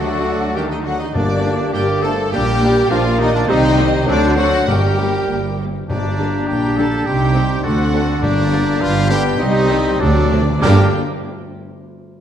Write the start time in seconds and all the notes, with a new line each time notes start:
Already playing: D2 D3 F#3 A3 D4 F#4 A4 D5 F#5
0.55 D#3 G3 G4 A#4 G5
0.70 D#3 D#4 G4 D#5
0.84 D3 F#3 F#4 A4 F#5
0.99 D#3 D#4 G4 D#5
1.14 G1 G2 D3 A#3 D4 G4 D5
1.44 A#3 D4
1.73 G1 G2 G3 A#3 D4 G4 A#4 D5 G5
2.03 A3 A#3 D4 A4 C5 A5
2.31 A#1 A#2 G3 A#3 D4 G4 A#4 D5 G5
2.62 A#3 D4
2.90 A#1 A#2 F3 A#3 D4 F4 A#4 D5 F5
3.19 D#3 A#3 D4 D#4 G4 D#5
3.34 D3 D4 F4 D5
3.48 C2 C3 D#3 G3 C4 D#4 G4 C5 D#5
3.78 G3 C4
4.07 D2 D3 F#3 C4 D4 F#4 C5 D5
4.37 F#3 C4 F#4 A4 F#5
4.68 G1 G2 G3 A#3 G4 A#4 G5
4.98 G3 A#3
5.29 G1 G2 G3 A#3
5.60 G3 A#3
5.89 G1 G2 G3 A#3 D4 G4 D5 A#5
6.19 D3 G3 A#3 D4
6.48 A#1 A#2 G4 G5
6.77 D3 G3 D4 A4 A5
7.06 C2 C3 C4 D#4 G4 G5 C6
7.35 G3 C4 D#4
7.63 D2 D3 D4 F#4 A4 F#5
7.93 D3 A3 C4 D4
8.22 G1 G2 A#3 D4 G4 D5 A#5
8.52 D3 G3 A#3 D4
8.79 G1 G2 G3 B3 F4 F5 B5
9.10 D3 G3 B3 D4 G4 G5
9.39 C2 C4 D#4 G4 D#5 C6
9.70 D#3 G3 C4
9.99 D2 D3 F#3 D4 F#4 A4 D5 D6
10.09 D3
10.17 D3
10.25 D3
10.32 D3 F#3 A3 C4
10.41 D3
10.49 D3
10.61 G1 G2 D3 G3 A#3 D4 G4 A#4 G5 D6